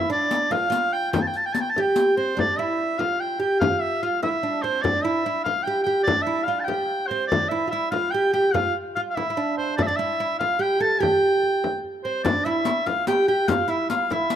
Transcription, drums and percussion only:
0.31 riq medium
0.52 frame drum medium
0.72 riq medium
1.13 riq medium
1.13 frame drum medium
1.34 riq soft
1.34 frame drum soft
1.55 riq medium
1.55 frame drum soft
1.76 frame drum medium
1.96 riq medium
2.18 frame drum soft
2.39 frame drum medium
3.00 frame drum medium
3.41 frame drum soft
3.61 frame drum medium
4.23 frame drum medium
4.65 frame drum soft
4.85 frame drum medium
5.46 frame drum medium
5.87 frame drum soft
6.08 frame drum medium
6.28 frame drum soft
6.69 frame drum medium
7.10 frame drum soft
7.32 frame drum medium
7.93 frame drum medium
8.35 frame drum soft
8.55 frame drum medium
9.17 frame drum medium
9.58 frame drum soft
9.79 frame drum medium
10.41 frame drum medium
10.82 frame drum soft
11.03 frame drum medium
11.23 frame drum soft
11.43 frame drum soft
11.64 frame drum medium
11.84 frame drum soft
12.25 riq medium
12.25 frame drum medium
12.45 riq soft
12.65 riq medium
12.86 riq soft
12.86 frame drum medium
13.07 riq medium
13.28 frame drum soft
13.48 riq medium
13.48 frame drum medium
13.69 riq soft
13.90 riq medium
14.10 riq soft
14.10 frame drum medium
14.30 riq medium

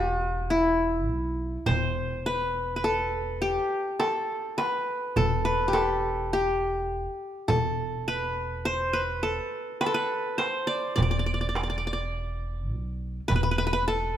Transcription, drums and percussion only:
0.21 darbuka ka soft
1.66 darbuka dum medium
2.83 darbuka ka soft
4.00 darbuka tek medium
4.59 darbuka tek medium
5.16 darbuka dum medium
5.74 darbuka tek medium
6.04 darbuka ka soft
7.49 darbuka dum medium
8.66 darbuka ka soft
9.81 darbuka tek medium
10.39 darbuka tek medium
10.98 darbuka dum medium
11.55 darbuka tek medium
11.85 darbuka ka soft
13.30 darbuka dum medium
13.59 darbuka ka soft
13.88 darbuka ka soft

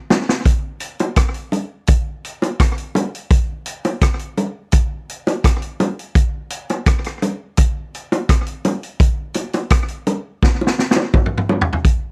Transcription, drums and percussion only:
0.10 snare medium
0.10 high bongo medium
0.10 low bongo medium
0.29 snare medium
0.45 kick loud
0.45 closed hi-hat medium
0.80 closed hi-hat medium
0.99 closed hi-hat soft
0.99 high bongo medium
1.16 kick loud
1.16 cross-stick loud
1.16 closed hi-hat medium
1.34 closed hi-hat medium
1.52 closed hi-hat medium
1.52 low bongo medium
1.87 kick loud
1.87 closed hi-hat medium
2.24 closed hi-hat medium
2.42 closed hi-hat medium
2.42 high bongo medium
2.60 kick loud
2.60 cross-stick loud
2.60 closed hi-hat medium
2.78 closed hi-hat soft
2.95 closed hi-hat medium
2.95 high bongo medium
2.95 low bongo medium
3.15 closed hi-hat medium
3.31 kick loud
3.31 closed hi-hat medium
3.66 closed hi-hat medium
3.85 closed hi-hat soft
3.85 high bongo medium
4.01 kick loud
4.01 cross-stick loud
4.01 closed hi-hat medium
4.19 closed hi-hat medium
4.38 closed hi-hat medium
4.38 low bongo medium
4.72 kick loud
4.72 closed hi-hat loud
5.09 closed hi-hat medium
5.27 closed hi-hat medium
5.27 high bongo medium
5.44 kick loud
5.44 cross-stick loud
5.44 closed hi-hat medium
5.62 closed hi-hat soft
5.80 closed hi-hat medium
5.80 high bongo medium
5.80 low bongo medium
5.99 closed hi-hat soft
6.15 kick loud
6.15 closed hi-hat medium
6.50 closed hi-hat medium
6.69 closed hi-hat medium
6.69 high bongo medium
6.86 kick loud
6.86 cross-stick loud
6.86 closed hi-hat medium
7.04 cross-stick medium
7.04 closed hi-hat medium
7.22 closed hi-hat medium
7.22 low bongo medium
7.57 kick loud
7.57 closed hi-hat loud
7.94 closed hi-hat medium
8.12 closed hi-hat medium
8.12 high bongo medium
8.29 kick loud
8.29 cross-stick loud
8.29 closed hi-hat medium
8.46 closed hi-hat soft
8.64 closed hi-hat medium
8.64 high bongo medium
8.64 low bongo medium
8.83 closed hi-hat soft
9.00 kick loud
9.00 closed hi-hat medium
9.34 closed hi-hat medium
9.34 high bongo medium
9.53 closed hi-hat medium
9.53 high bongo medium
9.70 kick loud
9.70 cross-stick loud
9.70 closed hi-hat medium
9.88 closed hi-hat medium
10.07 closed hi-hat medium
10.07 low bongo medium
10.43 kick loud
10.43 snare medium
10.61 high bongo medium
10.67 snare medium
10.79 snare medium
10.91 snare medium
10.96 high bongo medium
11.14 kick loud
11.14 mid tom medium
11.14 high bongo medium
11.26 mid tom medium
11.38 mid tom medium
11.49 high bongo medium
11.49 low bongo medium
11.61 floor tom loud
11.73 floor tom medium
11.85 kick loud
11.85 closed hi-hat medium

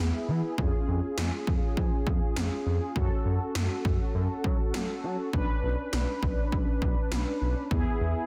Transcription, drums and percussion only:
0.58 kick loud
1.18 snare loud
1.47 kick loud
1.77 kick medium
2.07 kick medium
2.36 snare loud
2.96 kick loud
3.55 snare loud
3.85 kick loud
4.44 kick medium
4.74 snare loud
5.33 kick loud
5.93 snare loud
6.23 kick loud
6.52 kick medium
6.82 kick medium
7.12 snare loud
7.71 kick loud

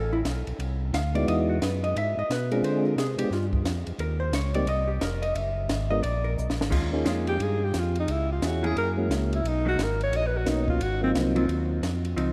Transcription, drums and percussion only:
0.25 snare medium
0.25 hi-hat pedal medium
0.25 ride medium
0.47 ride soft
0.60 ride medium
0.94 snare medium
0.94 hi-hat pedal medium
0.94 ride medium
1.15 ride soft
1.28 ride medium
1.62 snare medium
1.62 hi-hat pedal medium
1.62 ride medium
1.84 ride soft
1.96 ride medium
2.31 snare medium
2.31 hi-hat pedal soft
2.31 ride medium
2.51 ride medium
2.64 ride medium
2.98 snare medium
2.98 hi-hat pedal medium
2.98 ride medium
3.19 ride medium
3.32 snare soft
3.53 kick medium
3.65 snare medium
3.65 hi-hat pedal medium
3.65 ride medium
3.87 ride soft
3.99 ride medium
4.33 snare medium
4.33 hi-hat pedal medium
4.33 ride medium
4.54 ride medium
4.67 ride medium
5.01 snare medium
5.01 hi-hat pedal medium
5.01 ride medium
5.23 ride medium
5.35 ride medium
5.69 snare medium
5.69 hi-hat pedal medium
5.69 ride medium
6.03 ride medium
6.38 hi-hat pedal medium
6.50 snare medium
6.61 snare medium
6.72 kick medium
6.72 crash medium
7.06 snare medium
7.06 hi-hat pedal medium
7.06 ride medium
7.27 ride soft
7.40 ride medium
7.74 snare medium
7.74 hi-hat pedal medium
7.74 ride medium
7.95 ride soft
8.08 ride medium
8.42 snare medium
8.42 hi-hat pedal medium
8.42 ride medium
8.64 ride soft
8.77 ride medium
9.11 snare medium
9.11 hi-hat pedal medium
9.11 ride medium
9.33 ride soft
9.45 ride medium
9.79 snare medium
9.79 hi-hat pedal medium
9.79 ride medium
10.01 ride soft
10.13 ride medium
10.46 snare medium
10.46 hi-hat pedal medium
10.46 ride medium
10.68 kick medium
10.81 ride medium
11.15 snare medium
11.15 hi-hat pedal medium
11.15 ride medium
11.36 ride soft
11.49 ride medium
11.83 snare medium
11.83 hi-hat pedal medium
11.83 ride medium
12.05 ride medium
12.18 ride medium

